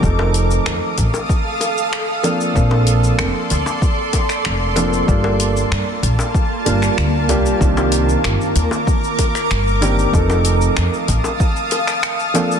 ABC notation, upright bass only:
X:1
M:4/4
L:1/8
Q:1/4=95
K:Fmix
V:1 name="Upright bass" clef=bass
F,,,2 F,, A,,, z4 | B,,,2 F,,, D,, z2 F,,,2 | G,,,2 G,, B,,, z G,,, D,, C,, | C,,2 G,,, E,, z2 G,,,2 |
F,,,2 F,, A,,, z4 |]